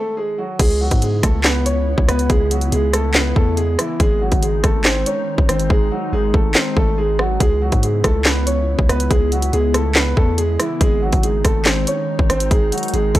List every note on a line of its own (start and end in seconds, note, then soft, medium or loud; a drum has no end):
0.00 0.16 A3 medium
0.00 0.16 A4 medium
0.17 0.38 G#3 medium
0.17 0.37 G#4 medium
0.38 0.59 F#3 medium
0.38 0.58 F#4 medium
0.59 0.90 C#2 loud
0.59 3.96 C#3 medium
0.59 0.80 G#3 medium
0.59 3.96 B3 medium
0.59 3.96 E4 medium
0.59 0.80 G#4 loud
0.59 kick loud
0.59 closed hi-hat medium
0.59 crash loud
0.81 1.01 F#3 medium
0.81 1.01 F#4 medium
0.91 1.22 G#2 loud
0.91 kick medium
0.91 closed hi-hat medium
1.02 1.23 G#3 medium
1.02 1.22 G#4 medium
1.02 closed hi-hat medium
1.23 1.95 C#2 loud
1.23 1.44 A3 medium
1.23 1.43 A4 medium
1.23 kick loud
1.23 cross-stick medium
1.23 closed hi-hat medium
1.44 1.65 B3 medium
1.44 1.65 B4 medium
1.44 snare loud
1.44 clap medium
1.66 2.06 C#4 medium
1.66 2.06 C#5 medium
1.66 closed hi-hat medium
1.98 2.08 C#2 loud
1.98 kick loud
2.08 2.29 C#2 loud
2.08 2.29 B3 medium
2.08 2.29 B4 loud
2.08 cross-stick loud
2.08 closed hi-hat medium
2.19 closed hi-hat medium
2.30 2.71 C#2 loud
2.30 2.50 G#3 medium
2.30 2.50 G#4 loud
2.30 kick loud
2.30 closed hi-hat medium
2.51 2.72 F#3 medium
2.51 2.71 F#4 medium
2.51 closed hi-hat medium
2.61 closed hi-hat medium
2.72 3.33 C#2 loud
2.72 2.93 G#3 medium
2.72 2.92 G#4 medium
2.72 closed hi-hat medium
2.93 3.14 A3 medium
2.93 3.14 A4 medium
2.93 cross-stick loud
2.93 closed hi-hat loud
3.14 3.36 B3 medium
3.14 3.35 B4 loud
3.14 snare loud
3.14 clap medium
3.36 3.77 E2 loud
3.36 3.57 A3 medium
3.36 3.56 A4 medium
3.36 kick loud
3.57 3.78 G#3 medium
3.57 3.77 G#4 loud
3.57 closed hi-hat medium
3.79 3.99 E3 medium
3.79 3.99 E4 medium
3.79 cross-stick medium
3.79 closed hi-hat medium
4.00 4.31 G#1 loud
4.00 7.37 D#3 medium
4.00 7.37 G#3 medium
4.00 4.21 G#3 medium
4.00 7.37 D#4 medium
4.00 4.20 G#4 loud
4.00 kick loud
4.00 closed hi-hat medium
4.21 4.42 F#3 medium
4.21 4.41 F#4 medium
4.32 4.62 G#1 loud
4.32 kick medium
4.32 closed hi-hat medium
4.42 4.63 G#3 medium
4.42 4.63 G#4 medium
4.42 closed hi-hat medium
4.64 5.05 G#1 loud
4.64 4.84 A3 medium
4.64 4.84 A4 medium
4.64 kick loud
4.64 cross-stick medium
4.64 closed hi-hat medium
4.85 5.06 C4 medium
4.85 5.05 C5 medium
4.85 snare loud
4.85 clap medium
5.06 5.47 C#4 medium
5.06 5.46 C#5 medium
5.06 closed hi-hat medium
5.38 5.48 G#1 loud
5.38 kick loud
5.49 5.69 G#1 loud
5.49 5.69 C4 medium
5.49 5.69 C5 medium
5.49 cross-stick loud
5.49 closed hi-hat medium
5.59 closed hi-hat medium
5.70 5.91 G#1 loud
5.70 5.91 G#3 medium
5.70 5.90 G#4 loud
5.70 kick loud
5.92 6.12 F#3 medium
5.92 6.12 F#4 medium
6.13 6.33 G#1 loud
6.13 6.33 G#3 medium
6.13 6.33 G#4 medium
6.34 6.54 G#1 loud
6.34 6.55 A3 medium
6.34 6.54 A4 medium
6.34 kick loud
6.55 6.76 C4 medium
6.55 6.75 C5 medium
6.55 snare loud
6.55 clap medium
6.77 7.38 G#1 loud
6.77 6.97 A3 medium
6.77 6.97 A4 medium
6.77 kick loud
6.98 7.18 G#3 medium
6.98 7.18 G#4 medium
7.19 7.40 F#3 medium
7.19 7.39 F#4 medium
7.19 cross-stick loud
7.40 7.71 C#2 loud
7.40 10.77 C#3 medium
7.40 7.61 G#3 medium
7.40 10.77 B3 medium
7.40 10.77 E4 medium
7.40 7.61 G#4 loud
7.40 kick loud
7.40 closed hi-hat medium
7.62 7.82 F#3 medium
7.62 7.82 F#4 medium
7.72 8.03 G#2 loud
7.72 kick medium
7.72 closed hi-hat medium
7.83 8.04 G#3 medium
7.83 8.03 G#4 medium
7.83 closed hi-hat medium
8.04 8.76 C#2 loud
8.04 8.25 A3 medium
8.04 8.24 A4 medium
8.04 kick loud
8.04 cross-stick loud
8.04 closed hi-hat medium
8.25 8.46 B3 medium
8.25 8.46 B4 medium
8.25 snare loud
8.25 clap medium
8.46 8.87 C#4 medium
8.46 8.87 C#5 medium
8.46 closed hi-hat medium
8.79 8.89 C#2 loud
8.79 kick loud
8.89 9.10 C#2 loud
8.89 9.10 B3 medium
8.89 9.09 B4 loud
8.89 cross-stick loud
8.89 closed hi-hat medium
9.00 closed hi-hat medium
9.11 9.51 C#2 loud
9.11 9.31 G#3 medium
9.11 9.31 G#4 loud
9.11 kick loud
9.11 closed hi-hat medium
9.32 9.53 F#3 medium
9.32 9.52 F#4 medium
9.32 closed hi-hat medium
9.42 closed hi-hat medium
9.53 10.14 C#2 loud
9.53 9.74 G#3 medium
9.53 9.73 G#4 medium
9.53 closed hi-hat medium
9.74 9.95 A3 medium
9.74 9.95 A4 medium
9.74 cross-stick loud
9.74 closed hi-hat loud
9.95 10.16 B3 medium
9.95 10.16 B4 loud
9.95 snare loud
9.95 clap medium
10.17 10.58 E2 loud
10.17 10.37 A3 medium
10.17 10.37 A4 medium
10.17 kick loud
10.38 10.59 G#3 medium
10.38 10.58 G#4 loud
10.38 closed hi-hat medium
10.60 10.80 E3 medium
10.60 10.80 E4 medium
10.60 cross-stick loud
10.60 closed hi-hat medium
10.81 11.11 G#1 loud
10.81 13.20 D#3 medium
10.81 13.20 G#3 medium
10.81 11.02 G#3 medium
10.81 13.20 D#4 medium
10.81 11.01 G#4 loud
10.81 kick loud
10.81 closed hi-hat medium
11.02 11.23 F#3 medium
11.02 11.22 F#4 medium
11.12 11.43 G#1 loud
11.12 kick medium
11.12 closed hi-hat medium
11.23 11.44 G#3 medium
11.23 11.43 G#4 medium
11.23 closed hi-hat medium
11.45 11.85 G#1 loud
11.45 11.65 A3 medium
11.45 11.65 A4 medium
11.45 kick loud
11.45 cross-stick loud
11.45 closed hi-hat medium
11.65 11.86 C4 medium
11.65 11.86 C5 medium
11.65 snare loud
11.65 clap medium
11.87 12.28 C#4 medium
11.87 12.27 C#5 medium
11.87 closed hi-hat medium
12.19 12.29 G#1 loud
12.19 kick loud
12.30 12.50 G#1 loud
12.30 12.50 C4 medium
12.30 12.50 C5 medium
12.30 cross-stick loud
12.30 closed hi-hat medium
12.40 closed hi-hat medium
12.51 12.71 G#1 loud
12.51 12.71 G#3 medium
12.51 12.71 G#4 loud
12.51 kick loud
12.51 closed hi-hat medium
12.72 12.93 F#3 medium
12.72 12.92 F#4 medium
12.72 closed hi-hat medium
12.78 closed hi-hat medium
12.83 closed hi-hat medium
12.88 closed hi-hat medium
12.94 13.14 G#1 loud
12.94 13.14 G#3 medium
12.94 13.14 G#4 medium
12.94 closed hi-hat medium
13.15 13.20 G#1 loud
13.15 13.20 A3 medium
13.15 13.20 A4 medium
13.15 kick loud
13.15 closed hi-hat medium